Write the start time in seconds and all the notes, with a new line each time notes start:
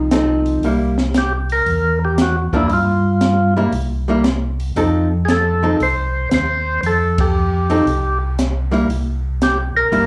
Already playing: C2
0.11 F3 C4 D#4 A4, snare, closed hi-hat
0.46 open hi-hat
0.62 C2 G3 A#3 E4, open hi-hat
0.98 snare
1.14 G4, snare, closed hi-hat
1.50 A#4, open hi-hat
1.66 E2, open hi-hat
2.05 G4
2.18 F#4, snare, closed hi-hat
2.53 F2 F3 A#3 D4 E4, kick
2.68 G2 E4, open hi-hat
2.73 F4
3.21 snare, closed hi-hat
3.57 G3 A#3 E4
3.72 C2, open hi-hat
4.08 G3 A#3 E4
4.24 snare, closed hi-hat
4.60 open hi-hat
4.76 F2 F3 C4 D#4 A4, open hi-hat
5.25 G#4, snare, closed hi-hat
5.30 A4
5.63 F3 C4 D#4 A4
5.79 C2 C5, open hi-hat
6.31 D#2 C5, snare, closed hi-hat
6.83 F2 A4, open hi-hat
7.18 G4, kick, ride
7.70 F3 C4 D#4 A4, open hi-hat
7.86 C2, open hi-hat
8.39 snare, closed hi-hat
8.71 G3 A#3 E4, open hi-hat
8.89 C2, open hi-hat
9.42 G4, snare, closed hi-hat
9.75 C2 A#4
9.92 G1 G3 A#3 E4, open hi-hat